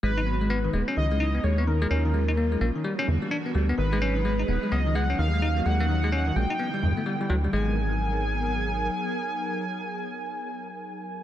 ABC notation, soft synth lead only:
X:1
M:4/4
L:1/8
Q:"Swing 16ths" 1/4=128
K:G#m
V:1 name="Soft synth lead"
B3 z d2 c A- | A3 z4 z | B4 d f ^e2 | f3 =g4 z |
g8- | g8 |]